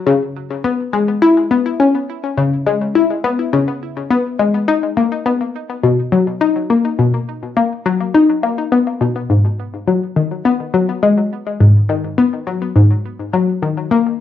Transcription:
0.07 0.23 C#3 medium
0.64 0.81 B3 medium
0.93 1.18 G#3 medium
1.22 1.46 E4 medium
1.51 1.75 B3 medium
1.80 1.96 C#4 medium
2.37 2.54 C#3 medium
2.66 2.83 G#3 medium
2.95 3.05 E4 medium
3.24 3.40 B3 medium
3.53 3.69 C#3 medium
4.10 4.27 B3 medium
4.39 4.64 G#3 medium
4.68 4.93 D#4 medium
4.97 5.21 A#3 medium
5.26 5.42 B3 medium
5.83 6.00 B2 medium
6.12 6.29 F#3 medium
6.41 6.51 D#4 medium
6.70 6.86 A#3 medium
6.99 7.15 B2 medium
7.57 7.73 A#3 medium
7.86 8.10 F#3 medium
8.14 8.39 D#4 medium
8.43 8.53 A#3 medium
8.72 8.88 B3 medium
9.01 9.25 B2 medium
9.30 9.46 G#2 medium
9.88 10.04 F#3 medium
10.16 10.41 D#3 medium
10.45 10.70 B3 medium
10.74 10.98 F#3 medium
11.03 11.19 G#3 medium
11.60 11.77 G#2 medium
11.89 12.06 D#3 medium
12.18 12.28 B3 medium
12.47 12.63 F#3 medium
12.76 12.92 G#2 medium
13.33 13.50 F#3 medium
13.62 13.87 D#3 medium
13.91 14.16 A#3 medium

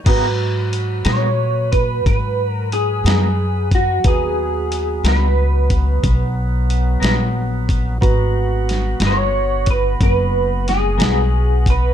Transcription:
0.04 1.03 G#2 medium
0.04 3.99 F#3 medium
0.04 0.26 G#3 medium
0.04 0.26 B3 medium
0.04 4.00 F#4 medium
0.04 0.26 F#4 medium
0.04 0.26 A#4 medium
0.04 3.99 B4 medium
0.04 4.00 B4 medium
0.04 4.00 A#5 soft
0.04 kick medium
0.04 closed hi-hat medium
0.04 crash medium
0.73 closed hi-hat soft
1.05 2.02 A#2 medium
1.05 1.26 G#3 medium
1.05 1.25 B3 medium
1.05 1.25 F#4 medium
1.05 1.25 A#4 medium
1.05 1.68 C#5 medium
1.05 snare medium
1.05 closed hi-hat medium
1.72 2.05 B4 medium
1.72 kick medium
1.72 closed hi-hat soft
2.06 3.02 G#2 medium
2.06 2.50 B4 medium
2.06 kick medium
2.06 closed hi-hat medium
2.50 2.68 A#4 medium
2.72 3.68 G#4 medium
2.72 closed hi-hat soft
3.04 4.01 F#2 medium
3.04 3.25 G#3 soft
3.04 3.25 B3 soft
3.04 3.25 F#4 soft
3.04 3.25 A#4 soft
3.04 snare medium
3.04 closed hi-hat medium
3.71 4.07 F#4 medium
3.71 kick medium
3.71 closed hi-hat medium
4.04 5.01 D#2 medium
4.04 7.98 F#3 medium
4.04 7.98 B3 medium
4.04 7.97 F#4 soft
4.04 5.08 G#4 medium
4.04 7.98 B4 medium
4.04 7.98 A#5 soft
4.04 kick medium
4.04 closed hi-hat medium
4.72 closed hi-hat medium
5.04 6.00 C#2 medium
5.04 5.24 G#3 medium
5.04 5.24 B3 medium
5.04 5.24 F#4 medium
5.04 5.24 A#4 medium
5.04 snare medium
5.04 closed hi-hat medium
5.08 6.34 B4 medium
5.70 kick medium
5.70 closed hi-hat medium
6.04 6.99 B1 medium
6.04 kick medium
6.04 closed hi-hat medium
6.70 closed hi-hat medium
7.00 7.98 A#1 medium
7.00 7.22 G#3 medium
7.00 7.21 B3 medium
7.00 7.21 F#4 medium
7.00 7.21 A#4 medium
7.00 closed hi-hat medium
7.04 snare loud
7.69 kick medium
7.69 closed hi-hat soft
8.01 8.98 G#1 medium
8.01 11.94 B3 medium
8.01 11.94 F#4 medium
8.01 11.94 B4 medium
8.01 11.94 A#5 medium
8.01 kick medium
8.01 closed hi-hat medium
8.69 snare soft
8.69 closed hi-hat soft
9.00 9.96 G1 medium
9.00 9.21 G#3 medium
9.00 9.21 B3 medium
9.00 9.20 F#4 medium
9.00 9.20 A#4 medium
9.00 snare medium
9.00 closed hi-hat medium
9.07 9.70 C#5 loud
9.66 kick medium
9.66 closed hi-hat medium
9.71 9.99 B4 medium
10.01 10.97 F#1 medium
10.01 10.68 B4 medium
10.01 kick loud
10.01 closed hi-hat medium
10.68 11.69 G#4 medium
10.68 snare soft
10.68 closed hi-hat medium
10.98 11.94 B1 medium
10.98 11.19 G#3 soft
10.98 11.19 B3 soft
10.98 11.18 F#4 soft
10.98 11.18 A#4 medium
10.98 snare loud
10.98 closed hi-hat medium
11.66 11.94 B4 medium
11.66 kick medium
11.66 closed hi-hat medium

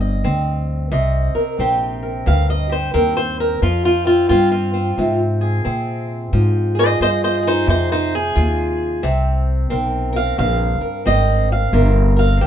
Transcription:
0.00 0.23 G1 medium
0.00 0.92 G2 medium
0.00 0.24 C4 soft
0.00 0.92 D#5 soft
0.24 0.90 D2 medium
0.24 1.38 C4 medium
0.92 1.32 C2 medium
0.92 2.27 C3 medium
0.92 2.27 D#5 soft
1.35 2.01 A#4 soft
1.35 muted upright bass stroke soft
1.59 2.25 A#1 medium
1.59 2.94 C4 medium
1.59 2.68 G4 soft
2.03 2.72 A#4 soft
2.26 2.93 D2 medium
2.26 3.62 G2 medium
2.26 2.49 F5 medium
2.50 2.72 D#5 medium
2.69 3.59 G4 soft
2.69 2.93 C5 medium
2.94 3.60 D#2 medium
2.94 3.62 C4 medium
2.94 3.16 A#4 medium
3.17 3.40 C5 medium
3.40 3.63 A#4 medium
3.62 4.28 F2 medium
3.62 6.32 F3 medium
3.62 3.84 F4 loud
3.85 4.06 F4 loud
4.05 4.30 C4 soft
4.05 4.28 F4 medium
4.29 4.96 G2 medium
4.29 4.73 C4 medium
4.29 4.50 F4 loud
4.52 5.20 F4 medium
4.73 5.64 C4 soft
4.98 5.63 G#2 loud
4.98 6.33 C3 medium
5.41 6.30 G#4 soft
5.65 6.31 A#2 medium
5.65 7.01 C4 medium
6.33 6.98 G#2 medium
6.33 9.03 F3 medium
6.75 7.42 G#4 soft
6.75 6.88 C5 medium
6.79 7.01 D#5 loud
7.00 7.66 G2 medium
7.00 7.46 F4 medium
7.00 7.08 C5 medium
7.00 7.23 D#5 medium
7.24 7.36 C5 medium
7.24 7.46 D#5 medium
7.43 8.13 G#4 soft
7.47 7.68 D#4 medium
7.47 7.69 C5 medium
7.67 8.33 F2 medium
7.67 9.00 C3 medium
7.67 7.91 D#4 medium
7.67 7.91 C5 medium
7.92 8.14 D#4 medium
7.92 8.14 C5 medium
8.15 9.04 G#4 loud
8.35 9.02 D#2 medium
8.35 9.00 F4 medium
9.03 9.69 C2 medium
9.03 10.38 C3 medium
9.03 9.70 C4 medium
9.70 10.37 B1 medium
9.70 11.05 C4 medium
9.70 10.12 A#4 medium
10.13 10.80 A#4 medium
10.13 10.38 F5 loud
10.38 10.78 A#1 loud
10.38 11.73 G2 medium
10.38 11.06 F5 loud
10.81 11.70 A#4 soft
10.81 muted upright bass stroke soft
11.06 11.71 G#1 medium
11.06 11.77 C4 medium
11.06 11.51 D#5 medium
11.52 12.18 F5 medium
11.73 12.39 G1 loud
11.73 12.47 C3 medium
11.73 12.15 A#4 medium
12.16 12.47 A#4 medium
12.16 12.47 F5 medium
12.41 12.47 A#1 medium
12.41 12.47 C4 medium
12.41 12.47 G4 medium

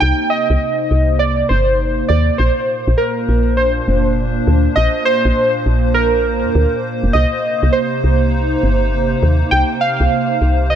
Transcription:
0.00 0.13 C2 loud
0.00 2.40 C3 medium
0.00 10.75 A#3 medium
0.00 2.40 D#4 medium
0.00 10.75 C5 medium
0.00 0.32 G5 loud
0.30 1.16 D#5 loud
0.50 0.57 C2 loud
0.91 1.43 C2 medium
1.19 1.48 D5 loud
1.49 2.03 G1 medium
1.49 2.05 C5 medium
2.08 2.31 D#2 medium
2.08 2.37 D5 medium
2.38 2.51 A#1 loud
2.38 7.15 A#2 medium
2.38 3.00 C5 medium
2.88 2.94 A#1 loud
2.98 3.54 A#4 medium
3.04 7.15 D4 medium
3.29 3.81 A#1 medium
3.57 4.13 C5 medium
3.88 4.40 F1 medium
4.47 4.68 D2 medium
4.76 4.88 A#1 loud
4.76 5.04 D#5 loud
5.05 5.62 C5 loud
5.25 5.32 A#1 loud
5.66 6.46 A#1 medium
5.94 6.80 A#4 loud
6.44 6.51 F2 medium
6.55 6.66 D2 loud
7.03 7.10 F1 medium
7.13 7.26 C2 loud
7.13 10.75 C3 medium
7.13 7.75 D#5 loud
7.54 10.75 D#4 medium
7.63 7.70 C2 loud
7.73 9.18 C5 medium
8.04 8.56 C2 medium
8.63 9.16 G1 medium
9.23 9.44 D#2 medium
9.51 9.64 C2 loud
9.51 9.65 G5 loud
9.81 10.67 F5 loud
10.00 10.07 C2 loud
10.41 10.75 C2 medium
10.70 10.75 D#5 loud

